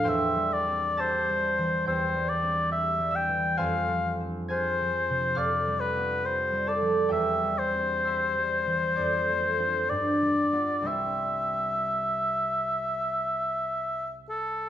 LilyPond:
<<
  \new Staff \with { instrumentName = "Oboe" } { \time 4/4 \key c \major \tempo 4 = 65 e''8 d''8 c''4 c''8 d''8 e''8 g''8 | f''8 r8 c''4 d''8 b'8 c''8 d''8 | e''8 c''2~ c''8 d''4 | e''2.~ e''8 a'8 | }
  \new Staff \with { instrumentName = "Harp" } { \time 4/4 \key c \major <c'' g'' c'''>4 <a'' e''' a'''>4 <g'' e''' g'''>4. <e'' e'''>8 | <c'' aes'' c'''>4 <aes'' f''' aes'''>4 <f'' d''' f'''>4. <a' a''>8 | <g' e'' g''>4 <e'' c''' e'''>4 <d'' d'''>2 | <c'' g'' c'''>1 | }
  \new Staff \with { instrumentName = "Harp" } { \clef bass \time 4/4 \key c \major \tuplet 3/2 { e,8 g8 c'8 g'8 g8 e8 e,8 g8 c'8 g'8 g8 e8 } | \tuplet 3/2 { f,8 f8 c'8 aes'8 f8 c8 f,8 g8 b8 g'8 g8 f8 } | \tuplet 3/2 { e,8 g8 c'8 g'8 g8 e8 f,8 a8 <c' f'>8 g,8 g8 <b f'>8 } | <c, g c' e'>1 | }
>>